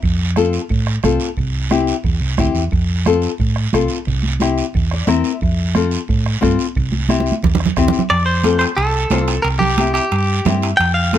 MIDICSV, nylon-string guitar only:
0, 0, Header, 1, 2, 480
1, 0, Start_track
1, 0, Key_signature, -1, "major"
1, 0, Tempo, 336323
1, 43, Time_signature, 4, 2, 24, 8
1, 15959, End_track
2, 0, Start_track
2, 0, Title_t, "Nylon-string guitar"
2, 0, Program_c, 0, 24
2, 515, Note_on_c, 0, 60, 80
2, 524, Note_on_c, 0, 65, 72
2, 532, Note_on_c, 0, 69, 88
2, 855, Note_off_c, 0, 60, 0
2, 860, Note_off_c, 0, 65, 0
2, 862, Note_off_c, 0, 69, 0
2, 1474, Note_on_c, 0, 60, 77
2, 1482, Note_on_c, 0, 65, 75
2, 1489, Note_on_c, 0, 69, 89
2, 1815, Note_off_c, 0, 60, 0
2, 1818, Note_off_c, 0, 65, 0
2, 1822, Note_off_c, 0, 69, 0
2, 2432, Note_on_c, 0, 60, 78
2, 2443, Note_on_c, 0, 64, 69
2, 2450, Note_on_c, 0, 67, 85
2, 2774, Note_off_c, 0, 60, 0
2, 2779, Note_off_c, 0, 64, 0
2, 2782, Note_off_c, 0, 67, 0
2, 3398, Note_on_c, 0, 60, 80
2, 3413, Note_on_c, 0, 64, 71
2, 3418, Note_on_c, 0, 67, 88
2, 3737, Note_off_c, 0, 60, 0
2, 3745, Note_off_c, 0, 64, 0
2, 3746, Note_off_c, 0, 67, 0
2, 4370, Note_on_c, 0, 60, 75
2, 4375, Note_on_c, 0, 65, 72
2, 4385, Note_on_c, 0, 69, 84
2, 4703, Note_off_c, 0, 60, 0
2, 4705, Note_off_c, 0, 65, 0
2, 4711, Note_off_c, 0, 69, 0
2, 5335, Note_on_c, 0, 60, 77
2, 5344, Note_on_c, 0, 65, 75
2, 5345, Note_on_c, 0, 69, 89
2, 5667, Note_off_c, 0, 60, 0
2, 5669, Note_off_c, 0, 65, 0
2, 5671, Note_off_c, 0, 69, 0
2, 6290, Note_on_c, 0, 60, 77
2, 6298, Note_on_c, 0, 64, 75
2, 6299, Note_on_c, 0, 67, 82
2, 6624, Note_off_c, 0, 60, 0
2, 6626, Note_off_c, 0, 64, 0
2, 6628, Note_off_c, 0, 67, 0
2, 7041, Note_on_c, 0, 74, 67
2, 7233, Note_on_c, 0, 60, 79
2, 7239, Note_off_c, 0, 74, 0
2, 7241, Note_on_c, 0, 64, 74
2, 7245, Note_on_c, 0, 76, 65
2, 7246, Note_on_c, 0, 70, 91
2, 7576, Note_off_c, 0, 60, 0
2, 7578, Note_off_c, 0, 64, 0
2, 7582, Note_off_c, 0, 70, 0
2, 7691, Note_off_c, 0, 76, 0
2, 8212, Note_on_c, 0, 60, 77
2, 8213, Note_on_c, 0, 65, 73
2, 8224, Note_on_c, 0, 69, 89
2, 8544, Note_off_c, 0, 65, 0
2, 8546, Note_off_c, 0, 60, 0
2, 8551, Note_off_c, 0, 69, 0
2, 9145, Note_on_c, 0, 60, 84
2, 9153, Note_on_c, 0, 65, 71
2, 9164, Note_on_c, 0, 69, 95
2, 9492, Note_off_c, 0, 60, 0
2, 9496, Note_off_c, 0, 65, 0
2, 9501, Note_off_c, 0, 69, 0
2, 10116, Note_on_c, 0, 60, 80
2, 10121, Note_on_c, 0, 64, 76
2, 10127, Note_on_c, 0, 67, 89
2, 10458, Note_off_c, 0, 60, 0
2, 10459, Note_off_c, 0, 64, 0
2, 10463, Note_off_c, 0, 67, 0
2, 11093, Note_on_c, 0, 60, 80
2, 11099, Note_on_c, 0, 64, 73
2, 11102, Note_on_c, 0, 67, 93
2, 11426, Note_off_c, 0, 60, 0
2, 11428, Note_off_c, 0, 64, 0
2, 11430, Note_off_c, 0, 67, 0
2, 12037, Note_on_c, 0, 60, 71
2, 12045, Note_on_c, 0, 65, 64
2, 12057, Note_on_c, 0, 69, 77
2, 12378, Note_off_c, 0, 60, 0
2, 12382, Note_off_c, 0, 65, 0
2, 12387, Note_off_c, 0, 69, 0
2, 13004, Note_on_c, 0, 60, 72
2, 13011, Note_on_c, 0, 65, 68
2, 13021, Note_on_c, 0, 72, 77
2, 13341, Note_off_c, 0, 60, 0
2, 13344, Note_off_c, 0, 65, 0
2, 13349, Note_off_c, 0, 72, 0
2, 13971, Note_on_c, 0, 60, 67
2, 13982, Note_on_c, 0, 67, 77
2, 13988, Note_on_c, 0, 64, 63
2, 14304, Note_off_c, 0, 60, 0
2, 14310, Note_off_c, 0, 67, 0
2, 14312, Note_off_c, 0, 64, 0
2, 14923, Note_on_c, 0, 60, 79
2, 14928, Note_on_c, 0, 64, 77
2, 14930, Note_on_c, 0, 67, 94
2, 15260, Note_off_c, 0, 60, 0
2, 15261, Note_off_c, 0, 64, 0
2, 15263, Note_off_c, 0, 67, 0
2, 15886, Note_on_c, 0, 60, 70
2, 15895, Note_on_c, 0, 65, 63
2, 15901, Note_on_c, 0, 69, 76
2, 15959, Note_off_c, 0, 60, 0
2, 15959, Note_off_c, 0, 65, 0
2, 15959, Note_off_c, 0, 69, 0
2, 15959, End_track
0, 0, End_of_file